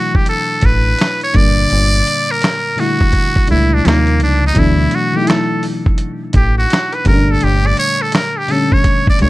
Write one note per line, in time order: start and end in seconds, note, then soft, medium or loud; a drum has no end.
0.00 1.36 B2 loud
0.00 1.36 E3 medium
0.00 1.36 F#3 medium
0.00 1.36 A3 medium
0.00 1.36 D4 loud
0.00 0.66 E4 medium
0.00 0.18 F#4 medium
0.15 0.28 G4 medium
0.15 kick medium
0.26 0.67 A4 medium
0.26 closed hi-hat medium
0.62 0.93 A1 medium
0.62 1.23 B4 loud
0.62 kick medium
0.62 closed hi-hat medium
0.99 finger snap medium
0.99 snare loud
0.99 closed hi-hat medium
1.21 1.38 C#5 medium
1.21 closed hi-hat soft
1.33 1.64 G1 medium
1.33 1.42 A2 medium
1.33 2.65 D3 medium
1.33 2.66 G3 medium
1.33 2.66 A#3 medium
1.33 2.33 D5 loud
1.33 kick medium
1.33 closed hi-hat medium
1.38 2.68 A#2 medium
1.38 2.67 D4 medium
1.70 2.01 G1 medium
1.70 closed hi-hat medium
2.07 closed hi-hat medium
2.31 2.81 A#4 medium
2.42 finger snap medium
2.42 snare loud
2.42 closed hi-hat medium
2.76 3.42 A#2 medium
2.76 3.43 D3 medium
2.76 3.43 G3 medium
2.76 3.44 A3 medium
2.76 3.50 F#4 medium
2.76 open hi-hat soft
2.81 3.44 E4 medium
3.01 kick medium
3.13 kick medium
3.13 closed hi-hat medium
3.36 kick medium
3.47 3.83 A#2 medium
3.47 3.84 G3 medium
3.47 3.85 A3 medium
3.47 3.84 D4 medium
3.47 closed hi-hat medium
3.51 3.79 C#2 medium
3.51 3.75 E4 medium
3.51 3.86 E4 medium
3.74 3.89 D4 medium
3.83 4.22 D#2 medium
3.83 4.49 C3 medium
3.83 4.50 F3 medium
3.83 4.50 G3 medium
3.83 4.51 A#3 medium
3.83 closed hi-hat medium
3.87 4.22 A#3 medium
3.87 4.51 D#4 medium
3.87 finger snap medium
3.87 snare loud
4.07 closed hi-hat soft
4.20 4.51 C#2 medium
4.20 4.43 D4 medium
4.20 closed hi-hat medium
4.47 4.60 D#4 medium
4.54 4.86 D2 medium
4.54 5.06 B2 medium
4.54 5.06 E3 medium
4.54 5.07 F#3 medium
4.54 5.07 A3 medium
4.54 kick medium
4.54 closed hi-hat medium
4.58 5.08 D4 loud
4.58 4.96 E4 medium
4.91 5.18 F#4 medium
4.91 closed hi-hat medium
5.13 6.36 B2 medium
5.13 6.36 E3 medium
5.13 6.36 F#3 medium
5.13 6.37 A3 medium
5.13 5.30 G4 medium
5.17 5.21 D#4 medium
5.24 6.41 E4 medium
5.24 closed hi-hat medium
5.28 5.64 A4 medium
5.28 finger snap medium
5.28 snare loud
5.63 open hi-hat soft
5.86 kick medium
5.98 closed hi-hat medium
6.33 6.64 A1 medium
6.33 6.57 G4 medium
6.33 kick loud
6.33 closed hi-hat medium
6.58 6.96 F#4 medium
6.70 finger snap medium
6.70 snare loud
6.70 closed hi-hat medium
6.93 7.07 B4 medium
6.93 closed hi-hat soft
7.05 7.36 G1 medium
7.05 8.36 A#2 medium
7.05 8.37 D3 medium
7.05 8.38 G3 medium
7.05 8.38 A3 medium
7.05 7.33 A#4 medium
7.05 kick loud
7.05 closed hi-hat medium
7.09 7.16 C#4 medium
7.16 8.42 D4 medium
7.31 7.45 A4 medium
7.41 7.72 G1 loud
7.41 7.68 G4 medium
7.41 closed hi-hat medium
7.66 7.78 D5 medium
7.77 8.03 C#5 loud
7.77 closed hi-hat medium
8.02 8.14 A4 medium
8.12 8.39 A#4 medium
8.12 finger snap medium
8.12 snare loud
8.12 closed hi-hat medium
8.38 8.53 G4 medium
8.48 9.14 A#2 medium
8.48 9.14 D3 medium
8.48 9.15 G3 medium
8.48 9.15 A3 medium
8.48 8.74 A4 medium
8.48 open hi-hat soft
8.52 9.16 C#4 medium
8.72 9.08 C#5 medium
8.72 kick medium
8.84 kick medium
8.84 closed hi-hat medium
9.07 9.21 D5 medium
9.07 kick medium
9.19 9.29 C#2 loud
9.19 9.29 A#2 medium
9.19 9.29 G3 medium
9.19 9.29 A3 medium
9.19 9.29 C#5 loud
9.19 closed hi-hat medium
9.23 9.29 D4 medium